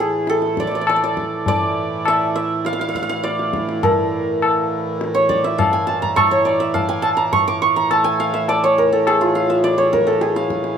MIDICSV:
0, 0, Header, 1, 4, 480
1, 0, Start_track
1, 0, Tempo, 589971
1, 1195, Time_signature, 4, 2, 24, 8
1, 4069, Tempo, 579151
1, 8856, End_track
2, 0, Start_track
2, 0, Title_t, "Santur"
2, 0, Program_c, 0, 15
2, 0, Note_on_c, 0, 68, 64
2, 0, Note_on_c, 0, 74, 85
2, 240, Note_on_c, 0, 69, 75
2, 289, Note_off_c, 0, 68, 0
2, 303, Note_off_c, 0, 74, 0
2, 486, Note_on_c, 0, 74, 68
2, 544, Note_off_c, 0, 74, 0
2, 547, Note_on_c, 0, 74, 50
2, 608, Note_off_c, 0, 74, 0
2, 611, Note_on_c, 0, 74, 57
2, 659, Note_off_c, 0, 74, 0
2, 662, Note_on_c, 0, 74, 51
2, 724, Note_off_c, 0, 74, 0
2, 728, Note_on_c, 0, 74, 56
2, 779, Note_off_c, 0, 74, 0
2, 782, Note_on_c, 0, 74, 50
2, 840, Note_off_c, 0, 74, 0
2, 843, Note_on_c, 0, 74, 61
2, 1201, Note_off_c, 0, 74, 0
2, 1205, Note_on_c, 0, 74, 87
2, 1691, Note_on_c, 0, 76, 81
2, 1914, Note_off_c, 0, 76, 0
2, 1917, Note_on_c, 0, 76, 76
2, 2164, Note_on_c, 0, 77, 84
2, 2213, Note_off_c, 0, 76, 0
2, 2217, Note_off_c, 0, 77, 0
2, 2220, Note_on_c, 0, 77, 64
2, 2283, Note_off_c, 0, 77, 0
2, 2286, Note_on_c, 0, 77, 70
2, 2345, Note_off_c, 0, 77, 0
2, 2348, Note_on_c, 0, 77, 60
2, 2402, Note_off_c, 0, 77, 0
2, 2405, Note_on_c, 0, 77, 69
2, 2459, Note_off_c, 0, 77, 0
2, 2462, Note_on_c, 0, 77, 65
2, 2514, Note_off_c, 0, 77, 0
2, 2517, Note_on_c, 0, 77, 69
2, 2623, Note_off_c, 0, 69, 0
2, 2629, Note_off_c, 0, 74, 0
2, 2632, Note_on_c, 0, 74, 72
2, 3117, Note_on_c, 0, 70, 69
2, 4188, Note_on_c, 0, 73, 71
2, 4238, Note_off_c, 0, 74, 0
2, 4308, Note_on_c, 0, 74, 71
2, 4319, Note_off_c, 0, 77, 0
2, 4358, Note_off_c, 0, 73, 0
2, 4436, Note_on_c, 0, 76, 70
2, 4552, Note_on_c, 0, 77, 70
2, 4602, Note_off_c, 0, 76, 0
2, 4671, Note_on_c, 0, 80, 72
2, 4788, Note_on_c, 0, 81, 73
2, 4838, Note_off_c, 0, 70, 0
2, 4838, Note_off_c, 0, 80, 0
2, 4914, Note_on_c, 0, 82, 74
2, 4963, Note_off_c, 0, 81, 0
2, 5031, Note_on_c, 0, 85, 89
2, 5081, Note_off_c, 0, 74, 0
2, 5156, Note_on_c, 0, 73, 72
2, 5270, Note_on_c, 0, 74, 69
2, 5320, Note_off_c, 0, 73, 0
2, 5320, Note_off_c, 0, 85, 0
2, 5394, Note_on_c, 0, 76, 70
2, 5444, Note_off_c, 0, 77, 0
2, 5510, Note_on_c, 0, 77, 80
2, 5560, Note_off_c, 0, 76, 0
2, 5631, Note_on_c, 0, 80, 80
2, 5744, Note_on_c, 0, 81, 82
2, 5794, Note_off_c, 0, 80, 0
2, 5794, Note_off_c, 0, 82, 0
2, 5864, Note_on_c, 0, 82, 79
2, 5914, Note_off_c, 0, 81, 0
2, 5996, Note_on_c, 0, 85, 85
2, 6046, Note_off_c, 0, 74, 0
2, 6120, Note_on_c, 0, 86, 82
2, 6170, Note_off_c, 0, 85, 0
2, 6238, Note_on_c, 0, 85, 84
2, 6288, Note_off_c, 0, 86, 0
2, 6355, Note_off_c, 0, 82, 0
2, 6358, Note_on_c, 0, 82, 77
2, 6478, Note_on_c, 0, 81, 81
2, 6528, Note_off_c, 0, 82, 0
2, 6590, Note_on_c, 0, 80, 85
2, 6640, Note_off_c, 0, 81, 0
2, 6715, Note_off_c, 0, 77, 0
2, 6718, Note_on_c, 0, 77, 78
2, 6833, Note_on_c, 0, 76, 74
2, 6883, Note_off_c, 0, 77, 0
2, 6959, Note_on_c, 0, 74, 86
2, 7008, Note_off_c, 0, 85, 0
2, 7082, Note_on_c, 0, 73, 76
2, 7132, Note_off_c, 0, 74, 0
2, 7202, Note_on_c, 0, 70, 71
2, 7321, Note_on_c, 0, 69, 67
2, 7371, Note_off_c, 0, 70, 0
2, 7371, Note_off_c, 0, 80, 0
2, 7443, Note_on_c, 0, 68, 74
2, 7493, Note_off_c, 0, 69, 0
2, 7558, Note_on_c, 0, 65, 66
2, 7607, Note_off_c, 0, 76, 0
2, 7675, Note_on_c, 0, 77, 68
2, 7795, Note_on_c, 0, 76, 67
2, 7845, Note_off_c, 0, 65, 0
2, 7845, Note_off_c, 0, 77, 0
2, 7912, Note_on_c, 0, 74, 79
2, 7961, Note_off_c, 0, 73, 0
2, 8028, Note_on_c, 0, 73, 71
2, 8078, Note_off_c, 0, 74, 0
2, 8152, Note_on_c, 0, 70, 69
2, 8268, Note_on_c, 0, 69, 67
2, 8318, Note_off_c, 0, 68, 0
2, 8318, Note_off_c, 0, 70, 0
2, 8388, Note_on_c, 0, 68, 65
2, 8438, Note_off_c, 0, 69, 0
2, 8512, Note_on_c, 0, 77, 68
2, 8562, Note_off_c, 0, 76, 0
2, 8856, Note_off_c, 0, 68, 0
2, 8856, Note_off_c, 0, 73, 0
2, 8856, Note_off_c, 0, 77, 0
2, 8856, End_track
3, 0, Start_track
3, 0, Title_t, "Harmonium"
3, 0, Program_c, 1, 20
3, 0, Note_on_c, 1, 45, 59
3, 0, Note_on_c, 1, 52, 57
3, 3112, Note_off_c, 1, 45, 0
3, 3114, Note_off_c, 1, 52, 0
3, 3124, Note_on_c, 1, 45, 62
3, 3126, Note_on_c, 1, 52, 59
3, 8856, Note_off_c, 1, 45, 0
3, 8856, Note_off_c, 1, 52, 0
3, 8856, End_track
4, 0, Start_track
4, 0, Title_t, "Tabla"
4, 221, Note_on_c, 9, 62, 67
4, 303, Note_off_c, 9, 62, 0
4, 342, Note_on_c, 9, 62, 53
4, 423, Note_off_c, 9, 62, 0
4, 465, Note_on_c, 9, 37, 50
4, 547, Note_off_c, 9, 37, 0
4, 582, Note_on_c, 9, 62, 51
4, 664, Note_off_c, 9, 62, 0
4, 707, Note_on_c, 9, 60, 68
4, 788, Note_off_c, 9, 60, 0
4, 952, Note_on_c, 9, 37, 53
4, 1033, Note_off_c, 9, 37, 0
4, 1188, Note_on_c, 9, 63, 68
4, 1188, Note_on_c, 9, 64, 60
4, 1270, Note_off_c, 9, 63, 0
4, 1270, Note_off_c, 9, 64, 0
4, 1672, Note_on_c, 9, 60, 65
4, 1753, Note_off_c, 9, 60, 0
4, 2155, Note_on_c, 9, 62, 65
4, 2236, Note_off_c, 9, 62, 0
4, 2274, Note_on_c, 9, 62, 48
4, 2355, Note_off_c, 9, 62, 0
4, 2400, Note_on_c, 9, 37, 48
4, 2482, Note_off_c, 9, 37, 0
4, 2519, Note_on_c, 9, 62, 53
4, 2601, Note_off_c, 9, 62, 0
4, 2638, Note_on_c, 9, 62, 65
4, 2719, Note_off_c, 9, 62, 0
4, 2761, Note_on_c, 9, 62, 54
4, 2842, Note_off_c, 9, 62, 0
4, 2875, Note_on_c, 9, 37, 50
4, 2956, Note_off_c, 9, 37, 0
4, 3000, Note_on_c, 9, 62, 50
4, 3081, Note_off_c, 9, 62, 0
4, 3118, Note_on_c, 9, 63, 92
4, 3118, Note_on_c, 9, 64, 81
4, 3199, Note_off_c, 9, 63, 0
4, 3199, Note_off_c, 9, 64, 0
4, 3599, Note_on_c, 9, 60, 65
4, 3681, Note_off_c, 9, 60, 0
4, 4076, Note_on_c, 9, 62, 65
4, 4159, Note_off_c, 9, 62, 0
4, 4195, Note_on_c, 9, 62, 52
4, 4278, Note_off_c, 9, 62, 0
4, 4313, Note_on_c, 9, 37, 48
4, 4396, Note_off_c, 9, 37, 0
4, 4433, Note_on_c, 9, 62, 49
4, 4516, Note_off_c, 9, 62, 0
4, 4556, Note_on_c, 9, 60, 64
4, 4556, Note_on_c, 9, 64, 65
4, 4639, Note_off_c, 9, 60, 0
4, 4639, Note_off_c, 9, 64, 0
4, 4803, Note_on_c, 9, 62, 53
4, 4886, Note_off_c, 9, 62, 0
4, 4917, Note_on_c, 9, 64, 46
4, 5000, Note_off_c, 9, 64, 0
4, 5039, Note_on_c, 9, 60, 71
4, 5039, Note_on_c, 9, 64, 66
4, 5121, Note_off_c, 9, 60, 0
4, 5121, Note_off_c, 9, 64, 0
4, 5279, Note_on_c, 9, 62, 51
4, 5362, Note_off_c, 9, 62, 0
4, 5517, Note_on_c, 9, 63, 62
4, 5517, Note_on_c, 9, 64, 58
4, 5600, Note_off_c, 9, 63, 0
4, 5600, Note_off_c, 9, 64, 0
4, 5752, Note_on_c, 9, 60, 52
4, 5835, Note_off_c, 9, 60, 0
4, 5994, Note_on_c, 9, 63, 67
4, 5994, Note_on_c, 9, 64, 60
4, 6077, Note_off_c, 9, 63, 0
4, 6077, Note_off_c, 9, 64, 0
4, 6477, Note_on_c, 9, 60, 67
4, 6560, Note_off_c, 9, 60, 0
4, 6955, Note_on_c, 9, 63, 71
4, 7038, Note_off_c, 9, 63, 0
4, 7440, Note_on_c, 9, 60, 66
4, 7523, Note_off_c, 9, 60, 0
4, 7912, Note_on_c, 9, 62, 69
4, 7995, Note_off_c, 9, 62, 0
4, 8034, Note_on_c, 9, 62, 53
4, 8117, Note_off_c, 9, 62, 0
4, 8158, Note_on_c, 9, 37, 46
4, 8241, Note_off_c, 9, 37, 0
4, 8275, Note_on_c, 9, 62, 51
4, 8358, Note_off_c, 9, 62, 0
4, 8388, Note_on_c, 9, 62, 66
4, 8471, Note_off_c, 9, 62, 0
4, 8513, Note_on_c, 9, 62, 53
4, 8596, Note_off_c, 9, 62, 0
4, 8628, Note_on_c, 9, 37, 55
4, 8711, Note_off_c, 9, 37, 0
4, 8743, Note_on_c, 9, 62, 53
4, 8826, Note_off_c, 9, 62, 0
4, 8856, End_track
0, 0, End_of_file